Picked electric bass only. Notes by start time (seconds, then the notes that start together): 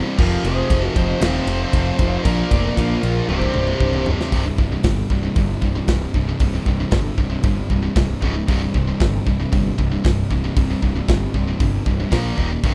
0.19 F1
0.45 F1
0.70 F1
0.96 F1
1.21 D#1
1.47 F1
1.73 F1
1.99 F1
2.25 A#1
2.52 F1
2.78 A#1
3.03 A#1
3.29 C1
3.55 C1
3.80 C1
4.33 C1
4.58 C1
4.84 G1
5.10 C1
5.36 G1
5.62 C1
5.88 C1
6.14 C1
6.40 C1
6.66 C1
6.92 G1
7.18 C1
7.44 G1
7.70 C1
7.96 C1
8.23 C#1
8.49 C1
8.75 C1
9.01 G1
9.27 C1
9.53 G1
9.79 C1
10.05 C1
10.31 C1
10.57 C1
10.83 C1
11.09 G1
11.35 C1
11.60 G1
11.86 C1
12.12 A#1
12.38 D#1
12.64 C1